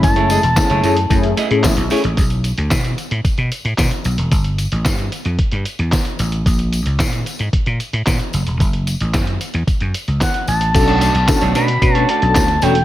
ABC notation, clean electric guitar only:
X:1
M:4/4
L:1/16
Q:1/4=112
K:Bdor
V:1 name="Clean electric guitar"
z [A,EGc] [A,EG^d] z2 [A,EGc] [A,EGc] z3 [A,EGd] z3 [A,EGc] z | z16 | z16 | z16 |
z16 | z [A,DFd] [A,DFd] z2 [A,DFc] [A,DFc] z2 [A,DFc] [A,DFd] z3 [A,DFc] z |]